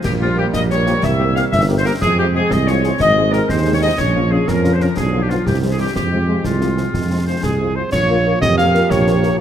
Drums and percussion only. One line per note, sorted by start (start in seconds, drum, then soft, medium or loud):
0.04 concert bass drum medium
0.04 snare medium
0.04 crash soft
0.54 concert bass drum medium
0.54 snare medium
0.70 snare medium
0.87 snare soft
1.03 concert bass drum medium
1.03 snare medium
1.36 snare soft
1.53 concert bass drum medium
1.53 snare medium
2.02 concert bass drum medium
2.02 snare medium
2.51 concert bass drum medium
2.51 snare medium
2.68 snare medium
2.84 snare soft
3.00 concert bass drum medium
3.00 snare medium
3.33 snare soft
3.49 concert bass drum medium
3.49 snare medium
3.98 concert bass drum medium
3.98 snare medium
3.98 crash soft
4.48 concert bass drum medium
4.48 snare medium
4.64 snare medium
4.81 snare soft
4.97 concert bass drum medium
4.97 snare medium
5.30 snare soft
5.47 concert bass drum medium
5.47 snare medium
5.96 concert bass drum medium
5.96 snare medium
6.44 concert bass drum medium
6.44 snare medium
6.61 snare medium
6.77 snare soft
6.94 concert bass drum medium
6.94 snare medium
7.43 concert bass drum medium
7.43 snare medium
7.93 concert bass drum medium
7.93 snare medium
7.93 crash soft
8.42 concert bass drum medium
8.42 snare medium
8.58 snare medium
8.75 snare soft
8.91 concert bass drum medium
8.91 snare medium
9.07 snare medium
9.23 snare soft